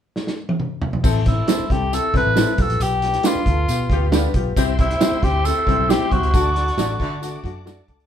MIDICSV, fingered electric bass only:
0, 0, Header, 1, 3, 480
1, 0, Start_track
1, 0, Key_signature, 1, "major"
1, 0, Tempo, 441826
1, 1129, Time_signature, 4, 2, 24, 8
1, 8761, End_track
2, 0, Start_track
2, 0, Title_t, "Fingered electric bass"
2, 0, Program_c, 0, 33
2, 1128, Note_on_c, 0, 33, 103
2, 1517, Note_off_c, 0, 33, 0
2, 1846, Note_on_c, 0, 36, 85
2, 2138, Note_off_c, 0, 36, 0
2, 2321, Note_on_c, 0, 35, 94
2, 2420, Note_off_c, 0, 35, 0
2, 2445, Note_on_c, 0, 33, 82
2, 2640, Note_off_c, 0, 33, 0
2, 2807, Note_on_c, 0, 35, 85
2, 2903, Note_off_c, 0, 35, 0
2, 2925, Note_on_c, 0, 34, 86
2, 3022, Note_off_c, 0, 34, 0
2, 3042, Note_on_c, 0, 35, 106
2, 3432, Note_off_c, 0, 35, 0
2, 3757, Note_on_c, 0, 38, 92
2, 3954, Note_off_c, 0, 38, 0
2, 4000, Note_on_c, 0, 47, 94
2, 4196, Note_off_c, 0, 47, 0
2, 4232, Note_on_c, 0, 38, 85
2, 4625, Note_off_c, 0, 38, 0
2, 4716, Note_on_c, 0, 35, 76
2, 4913, Note_off_c, 0, 35, 0
2, 4958, Note_on_c, 0, 36, 105
2, 5349, Note_off_c, 0, 36, 0
2, 5680, Note_on_c, 0, 38, 87
2, 5973, Note_off_c, 0, 38, 0
2, 6156, Note_on_c, 0, 36, 95
2, 6256, Note_off_c, 0, 36, 0
2, 6288, Note_on_c, 0, 35, 92
2, 6480, Note_off_c, 0, 35, 0
2, 6640, Note_on_c, 0, 36, 86
2, 6739, Note_off_c, 0, 36, 0
2, 6765, Note_on_c, 0, 37, 84
2, 6861, Note_off_c, 0, 37, 0
2, 6884, Note_on_c, 0, 38, 111
2, 7274, Note_off_c, 0, 38, 0
2, 7358, Note_on_c, 0, 33, 83
2, 7556, Note_off_c, 0, 33, 0
2, 7602, Note_on_c, 0, 50, 98
2, 7994, Note_off_c, 0, 50, 0
2, 8078, Note_on_c, 0, 42, 85
2, 8472, Note_off_c, 0, 42, 0
2, 8561, Note_on_c, 0, 37, 88
2, 8759, Note_off_c, 0, 37, 0
2, 8761, End_track
3, 0, Start_track
3, 0, Title_t, "Muted fingered electric bass strokes"
3, 1728, Note_on_c, 9, 29, 42
3, 1837, Note_off_c, 9, 29, 0
3, 3641, Note_on_c, 9, 29, 40
3, 3750, Note_off_c, 9, 29, 0
3, 5559, Note_on_c, 9, 29, 39
3, 5668, Note_off_c, 9, 29, 0
3, 8761, End_track
0, 0, End_of_file